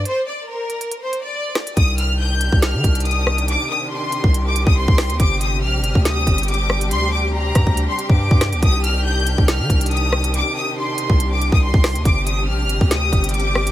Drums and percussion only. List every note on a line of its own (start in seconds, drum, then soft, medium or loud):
0.05 closed hi-hat medium
0.70 closed hi-hat soft
0.81 closed hi-hat medium
0.92 closed hi-hat medium
1.13 closed hi-hat medium
1.55 cross-stick loud
1.55 snare loud
1.55 closed hi-hat medium
1.67 closed hi-hat medium
1.77 kick loud
1.77 closed hi-hat medium
1.98 closed hi-hat medium
2.41 closed hi-hat medium
2.52 kick loud
2.62 snare loud
2.62 closed hi-hat medium
2.84 kick loud
2.84 closed hi-hat medium
2.95 closed hi-hat medium
3.00 closed hi-hat medium
3.05 closed hi-hat medium
3.11 closed hi-hat soft
3.27 cross-stick loud
3.38 closed hi-hat medium
3.48 closed hi-hat medium
4.12 closed hi-hat medium
4.24 kick loud
4.34 closed hi-hat medium
4.56 closed hi-hat medium
4.67 kick loud
4.88 kick loud
4.98 cross-stick loud
4.98 snare loud
4.98 open hi-hat medium
5.10 closed hi-hat medium
5.20 kick loud
5.20 closed hi-hat medium
5.41 closed hi-hat medium
5.84 closed hi-hat medium
5.95 kick loud
6.05 snare loud
6.05 closed hi-hat medium
6.27 kick loud
6.27 closed hi-hat medium
6.38 closed hi-hat medium
6.43 closed hi-hat medium
6.48 closed hi-hat medium
6.54 closed hi-hat soft
6.70 cross-stick loud
6.81 closed hi-hat medium
6.91 closed hi-hat medium
7.55 kick medium
7.55 cross-stick medium
7.55 closed hi-hat medium
7.67 kick loud
7.77 closed hi-hat medium
7.99 closed hi-hat medium
8.10 kick loud
8.31 kick loud
8.41 cross-stick loud
8.41 snare loud
8.41 closed hi-hat medium
8.53 closed hi-hat medium
8.63 kick loud
8.63 closed hi-hat medium
8.84 closed hi-hat medium
9.27 closed hi-hat medium
9.38 kick medium
9.48 snare loud
9.48 closed hi-hat medium
9.70 kick loud
9.70 closed hi-hat medium
9.81 closed hi-hat medium
9.86 closed hi-hat medium
9.91 closed hi-hat medium
9.97 closed hi-hat soft
10.13 cross-stick loud
10.24 closed hi-hat medium
10.34 closed hi-hat medium
10.98 closed hi-hat medium
11.10 kick loud
11.20 closed hi-hat medium
11.42 closed hi-hat medium
11.52 kick loud
11.74 kick loud
11.84 cross-stick loud
11.84 snare loud
11.84 open hi-hat medium
11.95 closed hi-hat medium
12.05 kick loud
12.05 closed hi-hat medium
12.27 closed hi-hat medium
12.69 closed hi-hat medium
12.81 kick loud
12.91 snare loud
12.91 closed hi-hat medium
13.13 kick loud
13.13 closed hi-hat medium
13.24 closed hi-hat medium
13.29 closed hi-hat medium
13.34 closed hi-hat medium
13.40 closed hi-hat soft
13.55 cross-stick loud
13.67 closed hi-hat medium